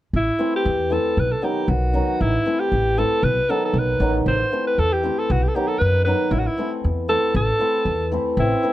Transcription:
0.13 0.29 A1 medium
0.13 0.51 E4 medium
0.39 0.89 E3 medium
0.39 0.58 A3 medium
0.39 0.58 C4 medium
0.39 0.59 E4 medium
0.56 0.94 G4 medium
0.65 0.96 E2 medium
0.90 1.22 E3 medium
0.90 1.10 A3 soft
0.90 1.10 C4 soft
0.90 1.10 E4 medium
0.90 1.21 A4 medium
1.17 1.33 B1 medium
1.17 1.33 B4 medium
1.32 1.46 A4 medium
1.42 1.92 D#3 medium
1.42 1.93 F#3 soft
1.42 1.62 B3 medium
1.42 1.62 D#4 medium
1.42 1.71 G4 medium
1.68 1.99 B1 medium
1.68 2.23 F#4 medium
1.93 2.25 D#3 medium
1.93 2.25 F#3 medium
1.93 2.13 B3 soft
1.93 2.13 D#4 medium
2.21 2.36 A1 medium
2.21 2.61 E4 medium
2.45 2.96 E3 soft
2.45 2.65 A3 medium
2.45 2.65 C4 soft
2.45 2.65 E4 medium
2.60 3.00 G4 medium
2.72 3.03 A1 medium
2.97 3.28 E3 medium
2.97 3.17 A3 medium
2.97 3.17 C4 medium
2.97 3.17 E4 medium
2.97 3.25 A4 medium
3.23 3.38 B1 medium
3.23 3.52 B4 medium
3.49 3.99 D#3 medium
3.49 3.99 F#3 medium
3.49 3.68 B3 medium
3.49 3.69 D#4 medium
3.49 3.63 A4 medium
3.65 3.80 A4 medium
3.73 3.97 B1 medium
3.79 4.16 B4 medium
4.00 4.23 A1 medium
4.00 4.31 D#3 medium
4.00 4.31 F#3 medium
4.00 4.20 B3 medium
4.00 4.20 D#4 medium
4.26 4.41 A1 medium
4.26 4.64 C5 medium
4.52 5.02 E3 medium
4.52 4.71 A3 medium
4.52 4.71 C4 medium
4.52 4.72 E4 medium
4.67 4.81 B4 medium
4.78 5.09 E2 medium
4.78 4.94 A4 medium
4.93 5.20 G4 medium
5.03 5.34 E3 medium
5.03 5.23 A3 medium
5.03 5.23 C4 medium
5.03 5.23 E4 medium
5.19 5.33 A4 medium
5.30 5.45 B1 medium
5.30 5.45 F#4 medium
5.43 5.50 G4 medium
5.48 5.56 A4 medium
5.55 6.05 D#3 medium
5.55 6.05 F#3 soft
5.55 5.74 B3 medium
5.55 5.75 D#4 medium
5.55 5.69 G4 medium
5.68 5.80 A4 medium
5.78 6.12 F#2 medium
5.78 6.04 B4 loud
6.05 6.37 D#3 medium
6.05 6.37 F#3 medium
6.05 6.26 B3 soft
6.05 6.26 D#4 medium
6.05 6.33 B4 medium
6.31 6.47 A1 medium
6.31 6.41 E4 medium
6.39 6.49 F#4 medium
6.47 6.72 E4 medium
6.57 7.07 E3 medium
6.57 6.77 A3 medium
6.57 6.77 C4 medium
6.57 6.78 E4 medium
6.84 7.15 E2 medium
7.08 7.40 E3 medium
7.08 7.28 A3 soft
7.08 7.28 C4 medium
7.08 7.29 E4 medium
7.08 7.33 A4 loud
7.35 7.50 A1 loud
7.35 8.09 A4 loud
7.59 8.10 E3 medium
7.59 7.79 A3 medium
7.59 7.80 C4 medium
7.59 7.80 E4 medium
7.85 8.16 E2 medium
8.12 8.43 E3 medium
8.12 8.31 A3 medium
8.12 8.31 C4 medium
8.12 8.32 E4 medium
8.37 8.53 A1 medium
8.37 8.73 C4 medium
8.37 8.73 E4 medium
8.63 8.73 E3 medium
8.63 8.73 A3 medium
8.63 8.73 C4 medium
8.63 8.73 E4 medium

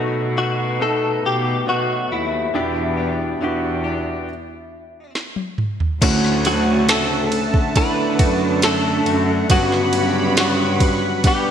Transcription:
0.00 1.19 B2 medium
0.00 0.36 F#3 medium
0.00 0.37 A3 soft
0.00 0.80 B3 medium
0.00 0.37 D#4 medium
0.00 0.81 D#4 medium
0.00 0.35 F#4 medium
0.00 0.37 F#4 medium
0.00 0.82 A4 medium
0.36 0.80 A3 soft
0.36 0.80 D#4 soft
0.36 0.80 F#4 soft
0.36 0.78 F#4 medium
0.80 1.67 B2 medium
0.80 1.66 A3 medium
0.80 1.63 B3 medium
0.80 1.63 D#4 medium
0.80 1.68 D#4 medium
0.80 1.64 A4 medium
0.80 1.22 A4 medium
1.23 1.64 B2 medium
1.23 1.65 G4 medium
1.66 2.08 B2 medium
1.66 2.53 F#3 medium
1.66 2.54 A3 medium
1.66 2.50 B3 medium
1.66 2.50 F#4 medium
1.66 2.13 F#4 medium
1.66 2.55 F#4 medium
1.66 2.50 D#5 medium
2.11 2.51 D#2 medium
2.11 5.12 E4 medium
2.54 3.37 E2 medium
2.54 3.81 B2 medium
2.54 2.98 E3 medium
2.54 2.98 B3 medium
2.54 3.37 D4 medium
2.54 2.98 D4 medium
2.54 3.37 E4 medium
2.54 3.37 G4 medium
2.54 2.96 G4 medium
2.97 3.41 B3 soft
2.97 3.42 D4 soft
2.97 3.41 G4 soft
3.41 4.24 E2 medium
3.41 3.84 E3 medium
3.41 3.85 B3 medium
3.41 4.24 D4 medium
3.41 3.84 D4 medium
3.41 4.25 E4 medium
3.41 4.25 F#4 medium
3.41 3.83 G4 medium
3.84 4.29 B3 soft
3.84 4.29 D4 soft
3.84 4.28 G4 soft
5.15 snare soft
5.36 high tom soft
5.58 mid tom medium
5.80 floor tom medium
6.00 7.93 D2 loud
6.00 7.29 A2 medium
6.00 7.72 C#3 medium
6.00 9.52 D3 medium
6.00 6.85 D3 medium
6.00 6.88 F#3 medium
6.00 6.85 A3 medium
6.00 6.88 A3 medium
6.00 7.72 C#4 medium
6.00 6.85 C#4 medium
6.00 6.90 C#4 medium
6.00 6.91 F#4 medium
6.00 6.85 F#4 medium
6.00 9.45 A4 medium
6.00 11.51 F#5 medium
6.00 9.46 A5 medium
6.00 kick loud
6.00 crash medium
6.00 ride medium
6.24 snare soft
6.45 6.87 F#3 medium
6.45 6.89 F#4 medium
6.45 ride medium
6.88 7.72 D3 medium
6.88 8.62 F#3 medium
6.88 7.71 A3 medium
6.88 8.20 A3 medium
6.88 7.73 A3 medium
6.88 7.72 C#4 medium
6.88 7.72 F#4 medium
6.88 8.19 F#4 medium
6.88 7.72 A4 medium
6.88 snare loud
6.88 ride medium
7.32 ride medium
7.54 kick medium
7.76 9.47 D3 medium
7.76 8.58 A3 medium
7.76 8.60 B3 medium
7.76 8.59 D4 medium
7.76 9.47 D4 medium
7.76 8.59 E4 medium
7.76 8.64 B4 loud
7.76 8.59 C#5 medium
7.76 kick medium
7.76 ride medium
8.19 9.02 F#2 medium
8.19 8.63 A3 soft
8.19 8.63 F#4 medium
8.19 kick medium
8.19 ride medium
8.62 9.06 F#3 medium
8.62 9.46 A3 medium
8.62 9.07 A3 medium
8.62 9.47 A3 medium
8.62 9.46 D4 medium
8.62 9.05 F#4 medium
8.62 9.46 A4 medium
8.62 9.46 C#5 medium
8.62 snare medium
8.62 ride medium
9.06 9.46 F#2 loud
9.06 9.50 A3 soft
9.06 9.50 F#4 medium
9.06 ride medium
9.49 11.51 G2 loud
9.49 10.77 G2 medium
9.49 11.21 C#3 medium
9.49 10.77 D3 medium
9.49 10.32 F#3 medium
9.49 10.34 F#3 medium
9.49 10.36 B3 medium
9.49 10.33 B3 medium
9.49 11.21 C#4 medium
9.49 10.33 F#4 medium
9.49 11.51 F#4 medium
9.49 11.51 B4 medium
9.49 11.51 B5 medium
9.49 kick loud
9.49 ride medium
9.72 snare soft
9.93 ride medium
10.37 11.20 F#3 medium
10.37 11.21 F#3 medium
10.37 11.51 B3 medium
10.37 11.20 B3 medium
10.37 11.20 F#4 medium
10.37 11.27 F#4 medium
10.37 snare loud
10.37 ride medium
10.80 kick medium
10.80 ride medium
11.23 11.51 B2 medium
11.23 11.51 G3 medium
11.23 11.51 B3 medium
11.23 11.51 D4 medium
11.23 11.51 G4 medium
11.23 11.51 F#5 medium
11.23 kick medium
11.23 ride medium

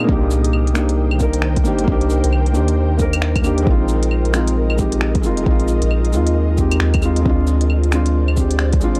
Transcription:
0.00 0.11 A#2 medium
0.00 0.10 C4 medium
0.00 0.09 D#4 medium
0.00 0.11 F4 medium
0.00 0.10 G#4 medium
0.00 0.11 A#4 medium
0.04 3.63 D#3 medium
0.04 0.72 A#3 medium
0.04 0.73 D4 medium
0.04 7.21 A#4 medium
0.04 3.63 G5 medium
0.09 1.66 C2 loud
0.09 0.74 D#4 medium
0.09 0.75 G4 loud
0.09 3.63 C5 medium
0.09 kick loud
0.31 cabasa medium
0.44 closed hi-hat medium
0.53 claves soft
0.67 closed hi-hat soft
0.74 1.17 A#3 medium
0.74 1.18 D4 medium
0.74 1.19 D#4 medium
0.74 finger snap loud
0.74 cabasa medium
0.78 1.20 G4 medium
0.89 closed hi-hat medium
1.11 claves medium
1.18 1.62 A#3 medium
1.18 1.63 D4 medium
1.18 1.64 D#4 medium
1.18 1.64 A#4 medium
1.18 kick medium
1.18 cabasa medium
1.33 closed hi-hat medium
1.42 finger snap loud
1.56 kick loud
1.56 closed hi-hat soft
1.63 1.86 G1 medium
1.63 1.82 A#3 loud
1.63 1.85 D4 medium
1.63 1.86 D#4 medium
1.63 1.87 G4 loud
1.63 cabasa medium
1.79 closed hi-hat medium
1.84 2.22 C2 loud
1.84 2.51 A#3 loud
1.84 2.52 D4 medium
1.84 kick loud
1.89 2.53 D#4 medium
1.89 2.55 G4 loud
2.01 closed hi-hat soft
2.10 cabasa medium
2.24 2.56 C2 loud
2.24 closed hi-hat medium
2.33 claves soft
2.46 closed hi-hat soft
2.52 3.66 D#2 medium
2.52 2.96 A#3 medium
2.52 2.97 D4 medium
2.52 2.98 D#4 medium
2.52 cabasa medium
2.56 2.99 G4 medium
2.68 closed hi-hat medium
2.97 3.40 A#3 medium
2.97 3.42 D4 medium
2.97 3.43 D#4 medium
2.97 3.43 A#4 medium
2.97 kick medium
2.97 cabasa medium
3.13 closed hi-hat medium
3.13 claves medium
3.22 finger snap loud
3.36 kick loud
3.36 closed hi-hat soft
3.36 claves medium
3.42 3.64 A#3 medium
3.42 3.64 D4 medium
3.42 3.65 D#4 medium
3.42 cabasa medium
3.42 claves soft
3.46 3.66 G4 loud
3.58 closed hi-hat medium
3.62 4.30 G#3 loud
3.62 4.31 C4 medium
3.62 9.00 F4 medium
3.62 7.21 D#5 medium
3.67 5.25 A#1 loud
3.67 4.32 D#4 medium
3.67 4.34 F4 loud
3.67 kick loud
3.89 cabasa medium
4.03 closed hi-hat medium
4.11 claves soft
4.25 closed hi-hat soft
4.32 4.75 G#3 medium
4.32 4.76 C4 medium
4.32 4.77 D#4 medium
4.32 4.78 F4 medium
4.32 finger snap loud
4.32 cabasa medium
4.47 closed hi-hat medium
4.70 claves medium
4.77 5.20 G#3 medium
4.77 5.21 C4 medium
4.77 5.22 D#4 medium
4.77 5.22 G4 medium
4.77 kick medium
4.77 cabasa medium
4.92 closed hi-hat medium
5.01 finger snap loud
5.15 kick loud
5.15 closed hi-hat soft
5.22 5.44 F1 medium
5.22 5.41 G#3 loud
5.22 5.44 C4 medium
5.22 5.44 D#4 medium
5.22 cabasa medium
5.26 5.45 F4 loud
5.37 closed hi-hat medium
5.43 5.81 A#1 loud
5.43 6.09 G#3 loud
5.43 6.11 C4 medium
5.43 kick loud
5.48 6.12 D#4 medium
5.48 6.13 F4 loud
5.60 closed hi-hat soft
5.68 cabasa medium
5.82 6.14 A#1 loud
5.82 closed hi-hat medium
5.91 claves soft
6.05 closed hi-hat soft
6.12 6.58 D#2 medium
6.12 6.55 G#3 medium
6.12 6.56 C4 medium
6.12 6.57 D#4 medium
6.12 6.58 F4 medium
6.12 cabasa medium
6.27 closed hi-hat medium
6.56 6.79 D#2 medium
6.56 7.00 G#3 medium
6.56 7.00 C4 medium
6.56 7.01 D#4 medium
6.56 kick medium
6.56 cabasa medium
6.60 7.02 G4 medium
6.71 closed hi-hat medium
6.71 claves medium
6.80 7.24 D#2 loud
6.80 finger snap loud
6.94 kick loud
6.94 closed hi-hat soft
6.94 claves medium
7.01 7.20 G#3 medium
7.01 7.23 C4 medium
7.01 7.24 D#4 medium
7.01 7.24 F4 loud
7.01 cabasa medium
7.01 claves soft
7.16 closed hi-hat medium
7.22 7.88 G#3 loud
7.22 7.90 C4 medium
7.26 8.83 D2 loud
7.26 7.91 D4 medium
7.26 7.92 F4 loud
7.26 9.00 C5 medium
7.26 9.00 D5 medium
7.26 kick loud
7.47 cabasa medium
7.61 closed hi-hat medium
7.70 claves soft
7.83 closed hi-hat soft
7.91 8.34 G#3 medium
7.91 8.35 C4 medium
7.91 8.36 D4 medium
7.91 finger snap loud
7.91 cabasa medium
7.95 8.37 F4 medium
8.06 closed hi-hat medium
8.28 claves soft
8.36 8.78 G#3 medium
8.36 8.80 C4 medium
8.36 8.80 D4 medium
8.36 kick medium
8.36 cabasa medium
8.40 8.81 G4 medium
8.51 closed hi-hat medium
8.59 finger snap loud
8.73 kick loud
8.73 closed hi-hat soft
8.80 9.00 G#1 medium
8.80 8.99 G#3 medium
8.80 9.00 C4 medium
8.80 9.00 D4 medium
8.80 cabasa medium
8.84 9.00 F4 loud
8.95 closed hi-hat medium

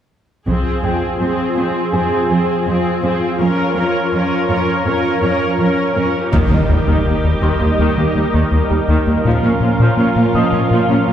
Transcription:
0.47 0.55 F2 soft
0.47 6.29 F3 medium
0.47 0.83 C4 soft
0.47 6.29 F4 medium
0.47 0.83 G#4 soft
0.47 3.36 G#4 soft
0.47 3.36 C5 medium
0.47 taiko soft
0.84 0.92 F2 soft
0.84 1.19 C4 soft
0.84 1.19 G#4 soft
0.84 3.00 G5 soft
1.20 1.28 F2 soft
1.20 1.56 C4 soft
1.20 1.55 G#4 soft
1.56 1.65 F2 soft
1.56 1.92 C4 soft
1.56 1.93 G#4 soft
1.93 2.01 F2 soft
1.93 2.30 C4 soft
1.93 4.09 G#4 soft
1.93 2.30 G#4 soft
1.93 4.09 G#5 soft
2.30 2.38 F2 soft
2.30 2.66 C4 soft
2.30 2.66 G#4 soft
2.67 2.75 F2 soft
2.67 3.02 C4 soft
2.67 3.02 G#4 soft
3.03 3.11 F2 soft
3.03 3.39 C4 soft
3.03 3.39 G#4 soft
3.40 3.48 F2 soft
3.40 3.76 C#4 soft
3.40 6.30 A#4 medium
3.40 3.76 A#4 soft
3.40 6.33 C#5 medium
3.76 3.84 F2 soft
3.76 4.12 C#4 soft
3.76 4.12 A#4 soft
4.13 4.21 F2 soft
4.13 4.48 C#4 soft
4.13 4.49 A#4 soft
4.49 4.57 F2 soft
4.49 4.86 C#4 soft
4.49 4.86 A#4 soft
4.86 4.94 F2 soft
4.86 5.21 C#4 soft
4.86 5.22 A#4 soft
5.22 5.30 F2 soft
5.22 5.59 C#4 soft
5.22 5.59 A#4 soft
5.59 5.67 F2 soft
5.59 5.94 C#4 soft
5.59 5.94 A#4 soft
5.95 6.03 F2 soft
5.95 6.32 C#4 soft
5.95 6.32 A#4 soft
6.31 6.40 D#2 soft
6.31 6.44 D#2 medium
6.31 6.49 D#3 soft
6.31 9.21 G3 medium
6.31 9.21 D#4 medium
6.31 9.21 G4 soft
6.31 11.13 A#4 medium
6.31 9.21 D#5 medium
6.31 taiko soft
6.31 impact soft
6.50 6.58 D#2 soft
6.50 6.62 D#3 medium
6.50 6.58 A#3 soft
6.69 6.76 D#2 soft
6.69 6.80 D#2 soft
6.69 6.76 G3 soft
6.87 6.94 D#2 soft
6.87 6.98 D#2 medium
6.87 7.04 D#3 soft
7.05 7.13 D#2 soft
7.05 7.17 D#3 soft
7.05 7.13 A#3 soft
7.23 7.31 D#2 soft
7.23 7.35 D#2 medium
7.23 7.32 G3 soft
7.42 7.49 D#2 soft
7.42 7.54 D#2 medium
7.42 7.59 D#3 soft
7.42 9.58 C6 soft
7.60 7.68 D#2 soft
7.60 7.72 D#2 soft
7.60 7.68 A#3 soft
7.78 7.86 D#2 soft
7.78 7.90 D#2 medium
7.78 7.97 D#3 soft
7.97 8.04 D#2 soft
7.97 8.08 D#3 soft
7.97 8.05 A#3 soft
8.15 8.22 D#2 soft
8.15 8.27 D#3 soft
8.15 8.24 G3 soft
8.33 8.40 D#2 soft
8.33 8.45 D#2 medium
8.33 8.51 D#3 soft
8.51 8.59 D#2 soft
8.51 8.63 D#2 soft
8.51 8.60 A#3 soft
8.70 8.78 D#2 soft
8.70 8.81 D#2 medium
8.70 8.78 G3 soft
8.88 8.99 D#2 medium
8.88 8.96 D#2 soft
8.88 9.06 D#3 soft
9.07 9.18 D#2 soft
9.07 9.14 D#2 soft
9.07 9.15 A#3 soft
9.23 9.36 A#2 medium
9.23 9.33 A#2 soft
9.23 11.13 F3 medium
9.23 9.43 F3 soft
9.23 11.13 C#4 medium
9.23 11.13 F4 soft
9.23 11.13 F5 medium
9.43 9.51 A#2 soft
9.43 9.54 A#3 soft
9.43 9.51 C#4 soft
9.60 9.72 A#2 soft
9.60 9.69 A#2 soft
9.60 9.70 A#3 soft
9.80 9.91 A#2 medium
9.80 9.88 A#2 soft
9.80 9.98 F3 soft
9.97 10.06 A#2 soft
9.97 10.09 A#3 soft
9.97 10.07 C#4 soft
10.16 10.27 A#2 soft
10.16 10.25 A#2 soft
10.16 10.24 A#3 soft
10.35 10.46 A#2 medium
10.35 10.43 A#2 soft
10.35 10.52 F3 soft
10.35 11.13 D#5 soft
10.35 11.13 D#6 soft
10.53 10.64 A#2 medium
10.53 10.61 A#2 soft
10.53 10.61 C#4 soft
10.71 10.82 A#2 medium
10.71 10.79 A#2 soft
10.71 10.89 F3 soft
10.89 10.98 A#2 soft
10.89 11.00 A#3 soft
10.89 10.97 C#4 soft
11.08 11.13 A#2 soft
11.08 11.13 A#3 soft

